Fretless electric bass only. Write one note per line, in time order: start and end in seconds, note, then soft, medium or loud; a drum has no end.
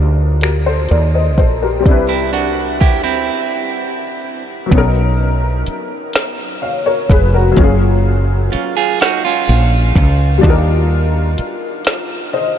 0.00 0.87 D2 medium
0.91 1.39 D#2 medium
1.39 1.86 A#1 medium
1.86 2.82 C2 loud
2.82 3.29 D2 medium
4.72 5.63 B1 loud
5.68 muted fretless electric bass stroke soft
7.11 7.54 F1 loud
7.57 8.48 F#1 loud
8.55 muted fretless electric bass stroke soft
9.49 9.92 A#1 medium
9.96 10.39 C#2 loud
10.44 11.35 D#2 loud
11.39 muted fretless electric bass stroke soft